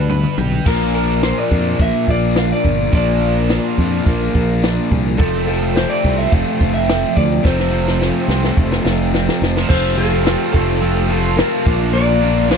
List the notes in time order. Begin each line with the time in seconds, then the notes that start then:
Already playing: D2 G3 D4 B4
0.10 G2 D3 B4, mid tom
0.24 mid tom
0.38 B1 G2 D3 G4, floor tom
0.52 floor tom
0.66 A#1 A#2 F3 A#3 D4 F4 A#4 D5 A#5, kick, crash
0.94 F3 A#4
1.23 A#3 C5, snare, open hi-hat
1.38 D5
1.51 F2 D4, kick
1.79 A#1 A#3 E5, kick, open hi-hat
2.07 A#1 F4 D5, kick
2.36 D4 F5, snare, open hi-hat
2.52 D5
2.64 G1 F3, kick
2.92 A#1 A#2 F3 A#3 D4 D5, kick, open hi-hat
3.21 F3
3.50 A#3, snare, open hi-hat
3.78 F2 D4, kick
4.06 A#1 A#3, kick, open hi-hat
4.35 A#1 F4, kick
4.63 D4, snare, open hi-hat
4.91 C2 F3, kick
5.18 F1 F2 C3 F3 A3 F4 A4 C5 A5, kick, open hi-hat
5.22 C4
5.47 F3 A4
5.75 A3 C5, snare, open hi-hat
5.90 D5
6.03 C2 C4, kick
6.18 E5
6.32 F1 A3 F5, kick, open hi-hat
6.60 F1 F4, kick
6.74 E5
6.88 C4, snare, open hi-hat
7.16 D2 F3 D5, kick
7.43 F1 F2 C3 F3 A3 C4 C5, kick, snare
7.60 snare
7.72 F3
7.88 snare
8.01 A3, snare
8.28 C2 C4, snare
8.44 snare
8.57 F1 A3, kick
8.72 snare
8.85 F1 F4, snare
9.14 C4, snare
9.29 snare
9.42 F1 F3, snare
9.57 snare
9.68 F1 F3 A3 C4 F4 G4 C5 F5 A5, kick, crash
9.96 F3 A3 C4 F4 A4
10.25 F3 A3 C4 F4, snare, crash
10.53 F1 F3 A3 C4 F4 A4, kick
10.81 F3 A3 C4 F4, crash
11.09 F3 A3 C4 F4
11.37 F3 A3 C4 F4 A#4, snare, crash
11.65 A#1 A#2 F3 A#3 D4 F4 A#4 D5 C6, kick
11.93 A#2 F3 A#3 D4 F4 D5, crash
12.21 A#2 F3 A#3 D4 F4
12.49 A#2 F3 A#3 D4 F4, snare, crash